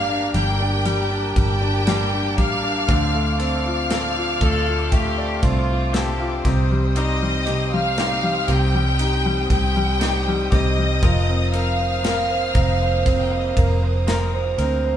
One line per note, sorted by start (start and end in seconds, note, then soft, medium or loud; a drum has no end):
0.00 0.31 G1 loud
0.00 0.34 G3 medium
0.00 0.35 G3 medium
0.00 0.35 A#3 medium
0.00 0.09 D4 medium
0.00 0.34 D4 medium
0.00 0.33 G4 medium
0.00 2.85 A#4 medium
0.00 0.31 F5 loud
0.00 0.84 G5 medium
0.00 6.41 D6 medium
0.00 0.32 F6 medium
0.09 0.59 D4 medium
0.34 1.32 G1 loud
0.34 0.84 G3 medium
0.34 1.85 G3 soft
0.34 1.86 A#3 soft
0.34 1.88 D4 soft
0.34 1.87 G4 soft
0.34 1.34 G4 medium
0.34 1.33 G5 loud
0.34 ride medium
0.60 1.10 D4 medium
0.85 1.35 G3 medium
0.85 2.87 A5 medium
0.85 ride medium
1.11 1.60 D4 medium
1.36 2.38 G1 medium
1.36 1.86 G3 medium
1.36 2.36 G4 medium
1.36 2.36 G5 loud
1.36 kick loud
1.36 ride medium
1.61 2.11 D4 medium
1.86 2.38 G3 medium
1.86 2.37 G3 medium
1.86 2.38 A#3 medium
1.86 2.37 D4 medium
1.86 2.36 G4 medium
1.86 snare loud
1.86 ride medium
2.13 2.62 D4 medium
2.37 2.85 A1 medium
2.37 2.88 G3 medium
2.37 2.88 G3 soft
2.37 2.89 A#3 soft
2.37 2.89 D4 soft
2.37 2.89 G4 medium
2.37 3.41 F5 loud
2.37 3.41 F6 medium
2.37 kick medium
2.37 ride soft
2.64 2.88 D4 medium
2.88 4.38 D2 loud
2.88 3.40 D3 medium
2.88 6.41 D3 medium
2.88 3.40 F3 medium
2.88 3.40 C4 medium
2.88 3.39 D4 medium
2.88 3.37 A4 medium
2.88 10.98 C5 medium
2.88 6.41 F5 medium
2.88 kick loud
2.88 ride medium
3.14 4.40 A3 soft
3.39 5.39 C4 medium
3.39 3.89 C4 soft
3.39 3.90 D4 medium
3.39 3.90 A4 medium
3.39 5.40 F5 medium
3.39 5.41 F6 medium
3.39 ride medium
3.66 4.15 F4 medium
3.90 4.41 F3 medium
3.90 4.42 C4 medium
3.90 4.41 D4 medium
3.90 5.90 A4 medium
3.90 4.40 A4 medium
3.90 snare loud
3.90 ride medium
4.16 4.65 F4 medium
4.41 5.39 D2 medium
4.41 4.91 A3 medium
4.41 5.94 C4 soft
4.41 5.95 D4 soft
4.41 4.89 A4 loud
4.41 5.94 A4 medium
4.41 kick loud
4.41 ride medium
4.67 5.68 F4 medium
4.92 6.41 A3 medium
4.92 5.43 G4 loud
4.92 kick medium
4.92 ride medium
5.18 6.41 D5 medium
5.43 6.41 C2 medium
5.43 6.42 C4 medium
5.43 5.94 F4 medium
5.43 kick loud
5.43 ride medium
5.69 6.18 F4 medium
5.93 6.45 F3 medium
5.93 6.45 C4 medium
5.93 6.46 D4 medium
5.93 6.71 G4 medium
5.93 6.44 A4 medium
5.93 snare loud
5.93 ride medium
6.20 6.45 F4 medium
6.44 8.44 C2 medium
6.44 7.46 C3 medium
6.44 6.95 C4 soft
6.44 6.96 D#4 medium
6.44 6.96 G4 medium
6.44 10.99 G5 medium
6.44 14.97 D#6 medium
6.44 kick medium
6.44 snare soft
6.44 ride medium
6.71 7.21 G3 medium
6.96 7.47 C3 medium
6.96 7.47 G3 medium
6.96 7.47 C4 medium
6.96 7.97 D#4 medium
6.96 7.46 D#4 medium
6.96 7.45 G4 medium
6.96 7.70 D#5 medium
6.96 7.70 D#6 medium
6.96 ride medium
7.22 7.72 G3 medium
7.46 8.47 C3 medium
7.46 7.97 C4 soft
7.46 7.98 D#4 medium
7.46 7.97 G4 medium
7.46 ride medium
7.73 8.22 G3 medium
7.73 8.50 F5 loud
7.73 8.50 F6 medium
7.97 8.48 G3 soft
7.97 8.49 C4 medium
7.97 8.98 D#4 medium
7.97 8.48 D#4 medium
7.97 8.47 G4 medium
7.97 snare loud
7.97 ride medium
8.23 8.73 G3 medium
8.48 9.46 C2 loud
8.48 9.49 C3 medium
8.48 10.00 C4 soft
8.48 10.01 D#4 soft
8.48 10.01 G4 soft
8.48 9.51 G4 medium
8.48 9.51 G5 loud
8.48 ride medium
8.75 9.24 G3 medium
8.99 10.00 D#4 medium
8.99 ride medium
9.26 9.75 G3 medium
9.50 10.48 C2 loud
9.50 10.51 C3 medium
9.50 10.49 G4 medium
9.50 10.49 G5 loud
9.50 kick loud
9.50 ride medium
9.76 10.26 G3 medium
10.00 10.51 G3 medium
10.00 10.52 C4 medium
10.00 11.00 D#4 medium
10.00 10.51 D#4 medium
10.00 10.49 G4 medium
10.00 snare loud
10.00 ride medium
10.28 10.77 G3 medium
10.51 10.99 C2 medium
10.51 11.01 C3 medium
10.51 11.02 C4 soft
10.51 11.02 D#4 soft
10.51 11.02 G4 medium
10.51 11.50 D#5 medium
10.51 11.51 D#6 medium
10.51 kick medium
10.51 snare soft
10.51 ride soft
10.78 11.03 G3 soft
11.02 12.51 F1 loud
11.02 11.53 F3 medium
11.02 14.97 F3 medium
11.02 14.97 A#3 medium
11.02 11.54 C4 medium
11.02 11.53 D#4 medium
11.02 11.51 A#4 medium
11.02 14.97 F5 medium
11.02 kick loud
11.02 ride medium
11.29 12.54 C4 medium
11.52 12.04 C4 soft
11.52 12.04 D#4 soft
11.52 12.04 A#4 medium
11.52 12.03 A#4 medium
11.52 13.21 F5 medium
11.52 13.21 F6 medium
11.52 ride medium
11.80 12.29 C5 medium
12.03 12.55 F3 medium
12.03 12.55 C4 soft
12.03 12.55 D#4 medium
12.03 13.56 A#4 medium
12.03 12.53 A#4 medium
12.03 snare loud
12.03 ride medium
12.30 12.80 C5 medium
12.54 13.53 F1 loud
12.54 13.05 C4 medium
12.54 14.07 C4 soft
12.54 14.08 D#4 soft
12.54 14.10 A#4 soft
12.54 kick loud
12.54 ride medium
12.82 13.30 C5 medium
13.06 14.57 C4 medium
13.06 kick medium
13.06 ride medium
13.22 13.30 G5 medium
13.30 13.81 C5 medium
13.30 13.39 F5 medium
13.40 13.49 D#5 medium
13.49 13.58 F5 medium
13.57 14.55 F1 medium
13.57 14.07 A#4 medium
13.57 kick medium
13.57 ride medium
13.82 14.32 C5 medium
14.07 14.58 F3 medium
14.07 14.59 C4 medium
14.07 14.59 D#4 medium
14.07 14.97 A#4 medium
14.07 14.57 A#4 medium
14.07 snare loud
14.07 ride medium
14.34 14.83 C5 medium
14.58 14.97 D2 medium
14.58 14.97 C4 soft
14.58 14.97 D#4 soft
14.58 14.97 A#4 medium
14.58 ride medium
14.84 14.97 C5 medium